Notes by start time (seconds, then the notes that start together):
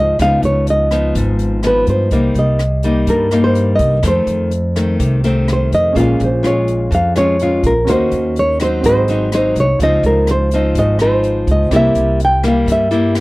Already playing: C#2 G#2 F3 C4 D#4
0.00 D#5
0.19 C#2 C#3 F3 B3 D#4 F5, kick, cross-stick, closed hi-hat
0.42 C#2 C#5, closed hi-hat
0.67 D#5, closed hi-hat
0.91 F3 B3 D#4, cross-stick, closed hi-hat
1.15 G#1 G#2, kick, closed hi-hat
1.39 closed hi-hat
1.63 F3 B3 D#4, cross-stick, closed hi-hat
1.67 B4
1.87 G2 C5, closed hi-hat
2.11 C2 C3 G3 A#3 D#4, kick, closed hi-hat
2.34 C2, closed hi-hat
2.39 D#5
2.59 cross-stick, closed hi-hat
2.83 G3 A#3 D#4, closed hi-hat
3.07 G2 A#4, kick, closed hi-hat
3.31 G3 A#3 D#4, cross-stick, closed hi-hat
3.44 C5
3.55 closed hi-hat
3.76 C2 D#5, kick, closed hi-hat
4.03 F2 D#3 A3 C4, kick, cross-stick, closed hi-hat
4.08 C5
4.27 F2, closed hi-hat
4.51 closed hi-hat
4.76 D#3 A3 C4, cross-stick, closed hi-hat
5.00 C2 C3, kick, closed hi-hat
5.24 D#3 A3 C4, closed hi-hat
5.48 cross-stick, closed hi-hat
5.53 C5
5.72 F2 D#5, closed hi-hat
5.92 A#1 A#2 G#3 C#4 G#4, kick, closed hi-hat
5.96 F4 A#4 F5
6.20 A#1 C5, closed hi-hat
6.43 G#3 C#4 F4 C#5, cross-stick, closed hi-hat
6.68 closed hi-hat
6.91 F2, kick, closed hi-hat
6.95 F5
7.16 G#3 C#4 F4 C#5, cross-stick, closed hi-hat
7.39 G#3 C#4 F4, closed hi-hat
7.63 A#1 A#4, kick, closed hi-hat
7.85 D#2 C#4 F#4 A#4, kick, cross-stick, closed hi-hat
7.89 D#3 A#3 C#4 F#4 C5 D#5
8.11 D#2, closed hi-hat
8.36 C#5, closed hi-hat
8.60 F#3 C4 D#4 C5, cross-stick, closed hi-hat
8.81 G#1 C4 F#4, kick, closed hi-hat
8.85 G#2 G#4 C5 D#5
9.08 F#3 C4 D#4, closed hi-hat
9.32 F#3 C4 D#4 C5, cross-stick, closed hi-hat
9.55 C2, closed hi-hat
9.60 C#5
9.79 C#2 C#3 F3 C4 F4 C5 D#5, kick, closed hi-hat
9.83 D#4 D#5
10.03 C#2 A#4, closed hi-hat
10.27 C5, cross-stick, closed hi-hat
10.51 F3 C4 D#4, closed hi-hat
10.75 G#1 G#2 D#5, kick, closed hi-hat
10.99 F3 C4 D#4 C5, cross-stick, closed hi-hat
11.24 closed hi-hat
11.47 C#2, kick, closed hi-hat
11.52 D#5
11.68 C2 C3 G3 C4 G4, kick, cross-stick, closed hi-hat
11.72 A#3 E4 A#4 E5
11.95 C2, closed hi-hat
12.20 closed hi-hat
12.25 G5
12.43 G3 A#3 E4, cross-stick, closed hi-hat
12.48 F5
12.66 G2, kick, closed hi-hat
12.72 E5
12.91 G3 A#3 E4, closed hi-hat
13.15 cross-stick, closed hi-hat